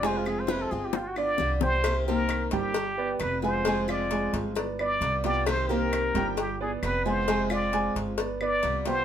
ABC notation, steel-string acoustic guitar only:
X:1
M:4/4
L:1/8
Q:1/4=133
K:Cm
V:1 name="Steel-string acoustic guitar"
[C,F,A,CF] [A,CF] [C,F,A,CF] [A,CF] z [=B,F] [G,B,F]2 | [C,E,B,CG] [E,B,CG]3 z2 [G,=B,F] [B,F] | [C,F,A,CF] [F,A,CF]3 z2 [G,=B,F] [B,F] | [C,E,B,CG] [E,B,CG]3 z2 [G,=B,F] [B,F] |
[C,F,A,CF] [F,A,CF]3 z2 [G,=B,F] [B,F] |]